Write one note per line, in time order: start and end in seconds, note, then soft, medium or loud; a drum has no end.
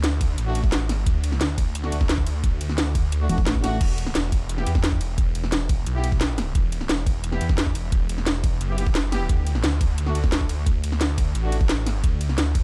0.00 0.37 D2 loud
0.00 snare loud
0.00 closed hi-hat medium
0.21 kick loud
0.21 closed hi-hat medium
0.21 ride medium
0.38 0.86 A1 loud
0.38 closed hi-hat loud
0.46 0.60 A3 medium
0.46 0.60 D4 medium
0.46 0.60 F#4 medium
0.55 closed hi-hat medium
0.55 ride medium
0.64 kick loud
0.72 snare loud
0.72 closed hi-hat loud
0.86 1.05 G#1 loud
0.86 snare medium
0.86 closed hi-hat medium
0.86 ride medium
1.06 1.39 D2 loud
1.06 kick loud
1.06 closed hi-hat loud
1.24 closed hi-hat medium
1.24 ride medium
1.32 snare soft
1.41 1.91 D2 loud
1.41 snare loud
1.41 closed hi-hat loud
1.58 kick loud
1.58 closed hi-hat medium
1.58 ride medium
1.75 closed hi-hat loud
1.84 1.97 A3 medium
1.84 1.97 D4 medium
1.84 1.97 F#4 medium
1.84 snare soft
1.92 2.25 D2 loud
1.92 closed hi-hat medium
1.92 ride medium
2.01 kick loud
2.01 snare soft
2.09 snare loud
2.09 closed hi-hat loud
2.18 kick medium
2.26 2.59 D2 loud
2.26 closed hi-hat medium
2.26 ride medium
2.44 kick loud
2.44 closed hi-hat loud
2.61 3.11 D2 loud
2.61 closed hi-hat medium
2.61 ride medium
2.69 snare soft
2.78 snare loud
2.78 closed hi-hat loud
2.95 kick loud
2.95 closed hi-hat medium
2.95 ride medium
3.12 3.28 D2 loud
3.12 closed hi-hat loud
3.21 3.28 A3 medium
3.21 3.28 D4 medium
3.21 3.28 F#4 medium
3.29 3.45 E1 loud
3.29 3.38 A3 medium
3.29 3.38 D4 medium
3.29 3.38 F#4 medium
3.29 closed hi-hat medium
3.29 ride medium
3.38 kick loud
3.47 3.79 A1 loud
3.47 snare loud
3.47 closed hi-hat loud
3.55 kick medium
3.64 3.77 A3 loud
3.64 3.77 D4 medium
3.64 3.77 F#4 loud
3.64 snare medium
3.64 closed hi-hat medium
3.64 ride medium
3.81 4.14 E1 loud
3.81 kick loud
3.81 closed hi-hat medium
3.81 crash medium
3.98 closed hi-hat medium
3.98 ride medium
4.07 snare soft
4.15 4.65 E1 loud
4.15 snare loud
4.15 closed hi-hat loud
4.32 kick loud
4.32 closed hi-hat medium
4.32 ride medium
4.49 closed hi-hat loud
4.58 4.71 B3 medium
4.58 4.71 E4 medium
4.58 4.71 G4 medium
4.58 snare soft
4.66 4.99 E2 loud
4.66 closed hi-hat medium
4.66 ride medium
4.75 kick loud
4.75 snare soft
4.84 snare loud
4.84 closed hi-hat loud
4.92 kick medium
5.01 5.34 E1 loud
5.01 closed hi-hat medium
5.01 ride medium
5.18 kick loud
5.18 closed hi-hat medium
5.35 5.85 E1 loud
5.35 closed hi-hat medium
5.35 ride medium
5.44 snare soft
5.52 snare loud
5.52 closed hi-hat loud
5.69 kick loud
5.69 closed hi-hat medium
5.69 ride medium
5.86 6.54 B1 loud
5.86 closed hi-hat loud
5.95 6.08 B3 medium
5.95 6.08 E4 medium
5.95 6.08 G4 medium
6.04 closed hi-hat medium
6.04 ride medium
6.12 kick loud
6.21 snare loud
6.21 closed hi-hat medium
6.38 snare medium
6.38 closed hi-hat medium
6.38 ride medium
6.55 6.88 E1 loud
6.55 kick loud
6.55 closed hi-hat medium
6.72 closed hi-hat medium
6.72 ride medium
6.81 snare soft
6.89 7.39 E1 loud
6.89 snare loud
6.89 closed hi-hat medium
7.07 kick loud
7.07 closed hi-hat medium
7.07 ride medium
7.24 closed hi-hat medium
7.32 7.45 B3 medium
7.32 7.45 E4 medium
7.32 7.45 G4 medium
7.32 snare soft
7.41 7.74 E2 loud
7.41 closed hi-hat medium
7.41 ride medium
7.49 kick loud
7.49 snare soft
7.58 snare loud
7.58 closed hi-hat medium
7.67 kick medium
7.75 8.08 E1 loud
7.75 closed hi-hat medium
7.75 ride medium
7.92 kick loud
7.92 closed hi-hat medium
8.09 8.59 E1 loud
8.09 closed hi-hat medium
8.09 ride medium
8.18 snare soft
8.27 snare loud
8.27 closed hi-hat medium
8.44 kick loud
8.44 closed hi-hat medium
8.44 ride medium
8.61 8.94 F#1 loud
8.61 closed hi-hat medium
8.69 8.76 B3 medium
8.69 8.76 E4 medium
8.69 8.76 G4 medium
8.78 8.86 B3 medium
8.78 8.86 E4 medium
8.78 8.86 G4 medium
8.78 closed hi-hat medium
8.78 ride medium
8.87 kick loud
8.95 9.28 F#1 loud
8.95 snare loud
8.95 closed hi-hat medium
9.12 9.25 B3 loud
9.12 9.25 E4 medium
9.12 9.25 G4 loud
9.12 snare medium
9.12 closed hi-hat medium
9.12 ride medium
9.29 9.62 D2 loud
9.29 kick loud
9.29 closed hi-hat medium
9.47 closed hi-hat medium
9.47 ride medium
9.55 snare soft
9.64 10.14 D2 loud
9.64 snare loud
9.64 closed hi-hat medium
9.81 kick loud
9.81 closed hi-hat medium
9.81 ride medium
9.98 closed hi-hat medium
10.06 10.20 A3 medium
10.06 10.20 D4 medium
10.06 10.20 F#4 medium
10.06 snare soft
10.15 10.48 D2 loud
10.15 closed hi-hat medium
10.15 ride medium
10.24 kick loud
10.24 snare soft
10.32 snare loud
10.32 closed hi-hat medium
10.41 kick medium
10.49 10.82 D2 loud
10.49 closed hi-hat medium
10.49 ride medium
10.66 kick loud
10.66 closed hi-hat medium
10.84 11.34 D2 loud
10.84 closed hi-hat medium
10.84 ride medium
10.92 snare soft
11.01 snare loud
11.01 closed hi-hat loud
11.18 kick loud
11.18 closed hi-hat medium
11.18 ride medium
11.35 11.83 A1 loud
11.35 closed hi-hat medium
11.44 11.57 A3 medium
11.44 11.57 D4 medium
11.44 11.57 F#4 medium
11.52 closed hi-hat medium
11.52 ride medium
11.61 kick loud
11.69 snare loud
11.69 closed hi-hat medium
11.83 12.02 G#1 loud
11.83 snare medium
11.83 closed hi-hat medium
11.83 ride medium
12.04 12.37 D2 loud
12.04 kick loud
12.04 closed hi-hat loud
12.21 closed hi-hat medium
12.21 ride medium
12.29 snare soft
12.38 12.63 D2 loud
12.38 snare loud
12.38 closed hi-hat loud
12.55 kick loud
12.55 closed hi-hat medium
12.55 ride medium